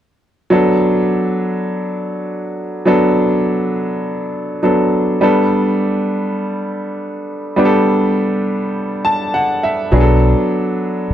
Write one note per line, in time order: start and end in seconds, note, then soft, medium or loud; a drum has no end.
0.50 2.82 F#3 medium
0.50 2.82 B3 medium
0.50 2.83 D4 medium
0.50 2.83 A4 medium
2.85 4.59 F#3 medium
2.85 4.59 B3 medium
2.85 4.60 D4 medium
2.85 4.60 A4 medium
4.63 5.22 F#3 medium
4.63 5.20 B3 soft
4.63 5.21 D4 soft
4.63 5.22 A4 medium
5.21 7.53 G3 medium
5.21 7.53 B3 medium
5.21 7.53 D4 medium
5.21 7.54 A4 medium
7.56 9.88 G3 medium
7.56 9.88 B3 medium
7.56 9.89 D4 medium
7.56 7.67 G4 medium
7.65 9.92 A4 medium
9.05 9.32 A5 medium
9.34 9.61 F#5 medium
9.63 9.91 E5 medium
9.92 10.33 B1 loud
9.92 11.14 F#3 medium
9.92 11.14 B3 medium
9.92 11.14 D4 medium
9.92 10.02 G#4 medium
10.01 11.14 A4 medium
11.10 muted fingered electric bass stroke soft